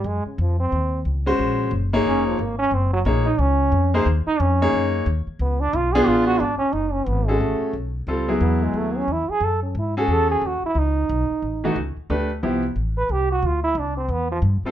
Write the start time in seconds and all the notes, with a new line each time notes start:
0.04 F#2 G#3
0.26 C#3, muted upright bass stroke
0.38 F2 F3
0.60 C4
0.72 D#2
1.05 C#2
1.26 G#3 C#4 F#4 C5
1.39 A#1
1.71 F#1
1.93 A#3 D#4 G#4 C#5
2.06 F1 C#4
2.27 F3
2.39 G#1 A#3
2.59 C#4
2.71 F#1 C4
2.93 F#3
3.05 A#1 A#3 D#4 G#4 C#5
3.26 D#4
3.39 C#2 C#4
3.72 F2
3.94 A#3 D#4 G#4 C5
4.06 D#2
4.27 D#4, muted upright bass stroke
4.40 F2 C#4
4.62 A#3 D#4 G#4 C#5
4.73 F#2
5.06 D#2
5.27 muted upright bass stroke
5.39 C#2 B3
5.60 D4
5.73 B1 F4
5.93 B3 D4 F4 G#4
6.07 A1 F4
6.27 F#4
6.40 G#1 D4
6.59 C#4, muted upright bass stroke
6.73 F#1 D#4
6.93 C#4
7.07 G#1 B3
7.27 G#3 C#4 F#4 G#4 A4
7.40 A1 A3
7.61 muted upright bass stroke
7.73 B1
8.07 C#2 G3 C4 F4 A4
8.28 F#3 B3 E4 G#4
8.41 E2 B3
8.63 G#3
8.74 D#2 A3
8.97 C#4
9.08 E2
9.12 E4
9.29 G#4, muted upright bass stroke
9.41 F#2 A4
9.63 C#4
9.75 G#2 E4
9.97 C#4 F#4 G#4 A4
10.08 E2
10.13 A4
10.31 G#4
10.42 D#2
10.46 F#4
10.63 E4, muted upright bass stroke
10.75 C#2 D#4
11.09 B1
11.30 muted upright bass stroke
11.42 A1
11.64 E3 A3 D#4 F#4
11.76 C#2
11.97 muted upright bass stroke
12.10 D2 A3 D4 G4 B4
12.43 C2 F3 B3 E4 G4
12.76 A1
12.98 B4
13.09 C2 G4
13.32 F#4
13.43 D2 F4
13.64 E4
13.75 C2 D4
13.97 C4
14.09 E2 B3
14.32 F3
14.42 G2
14.63 G3 C4 F4 A4, muted upright bass stroke